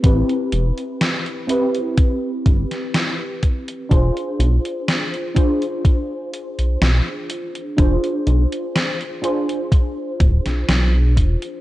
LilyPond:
<<
  \new Staff \with { instrumentName = "FM electric piano" } { \time 4/4 \key e \phrygian \tempo 4 = 62 <c' e' g' b'>4. <c' e' g' b'>2~ <c' e' g' b'>8 | <d' f' gis' c''>4. <d' f' gis' c''>2~ <d' f' gis' c''>8 | <d' f' gis' c''>4. <d' f' gis' c''>2~ <d' f' gis' c''>8 | }
  \new Staff \with { instrumentName = "Analog synth bass" } { \clef bass \time 4/4 \key e \phrygian a,,16 r16 e,,16 r4. r16 g,,16 r4 r16 | e,,16 r16 b,,16 r2 b,,16 b,,16 r8. | e,,16 r16 b,,16 r4. r16 d,,16 b,,16 b,,8 e,,16 r16 | }
  \new DrumStaff \with { instrumentName = "Drums" } \drummode { \time 4/4 <hh bd>16 hh16 hh16 hh16 <hh sn>16 hh16 hh16 hh16 <hh bd>8 <hh bd>16 <hh sn>16 <hh sn>8 <hh bd>16 hh16 | <hh bd>16 hh16 hh16 hh16 <hh sn>16 hh16 <hh bd>16 hh16 <hh bd>8 hh16 hh16 <hh sn>8 hh16 hh16 | <hh bd>16 hh16 hh16 hh16 <hh sn>16 hh16 hh16 hh16 <hh bd>8 <hh bd>16 <hh sn>16 <hh sn>8 <hh bd>16 hh16 | }
>>